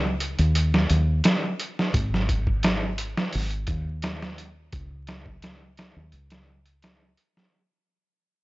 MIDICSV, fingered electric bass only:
0, 0, Header, 1, 2, 480
1, 0, Start_track
1, 0, Tempo, 697674
1, 1331, Time_signature, 4, 2, 24, 8
1, 5805, End_track
2, 0, Start_track
2, 0, Title_t, "Fingered electric bass"
2, 0, Program_c, 0, 33
2, 0, Note_on_c, 0, 37, 100
2, 237, Note_off_c, 0, 37, 0
2, 269, Note_on_c, 0, 39, 85
2, 618, Note_off_c, 0, 39, 0
2, 622, Note_on_c, 0, 39, 81
2, 829, Note_off_c, 0, 39, 0
2, 1338, Note_on_c, 0, 32, 98
2, 2156, Note_off_c, 0, 32, 0
2, 2305, Note_on_c, 0, 32, 88
2, 2510, Note_off_c, 0, 32, 0
2, 2535, Note_on_c, 0, 39, 72
2, 3231, Note_off_c, 0, 39, 0
2, 3256, Note_on_c, 0, 37, 90
2, 4075, Note_off_c, 0, 37, 0
2, 4104, Note_on_c, 0, 39, 86
2, 4216, Note_off_c, 0, 39, 0
2, 4220, Note_on_c, 0, 37, 77
2, 4913, Note_off_c, 0, 37, 0
2, 5805, End_track
0, 0, End_of_file